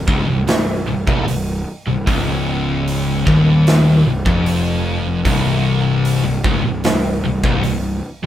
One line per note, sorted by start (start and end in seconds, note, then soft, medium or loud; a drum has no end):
0.07 0.26 C#1 loud
0.07 0.26 C#2 loud
0.07 kick loud
0.27 0.46 C1 medium
0.27 0.47 C2 medium
0.47 0.85 C1 medium
0.47 0.80 C2 medium
0.47 snare loud
0.47 open hi-hat medium
0.86 1.05 C1 medium
0.86 1.06 C2 medium
1.07 1.26 C1 loud
1.07 1.26 C2 loud
1.07 kick loud
1.26 1.64 C1 medium
1.26 1.59 C2 medium
1.26 open hi-hat medium
1.87 2.06 C1 medium
1.87 2.07 C2 medium
2.07 3.23 C#1 loud
2.07 3.25 C#2 loud
2.07 kick loud
2.07 open hi-hat medium
2.87 open hi-hat medium
3.27 4.02 D#1 loud
3.27 4.05 D#2 loud
3.27 kick loud
3.67 snare loud
3.67 open hi-hat medium
4.06 4.24 C1 medium
4.06 4.26 C2 medium
4.26 5.21 F1 loud
4.26 5.24 F2 loud
4.26 kick loud
4.46 open hi-hat medium
5.25 6.21 C1 loud
5.25 6.24 C2 loud
5.25 kick loud
5.25 open hi-hat medium
6.05 open hi-hat medium
6.24 6.43 C1 medium
6.24 6.44 C2 medium
6.44 6.63 C#1 loud
6.44 6.63 C#2 loud
6.44 kick loud
6.63 6.82 C1 medium
6.63 6.83 C2 medium
6.84 7.21 C1 medium
6.84 7.16 C2 medium
6.84 snare loud
6.84 open hi-hat medium
7.24 7.42 C1 medium
7.24 7.43 C2 medium
7.43 7.62 C1 loud
7.43 7.63 C2 loud
7.43 kick loud
7.63 8.01 C1 medium
7.63 7.96 C2 medium
7.63 open hi-hat medium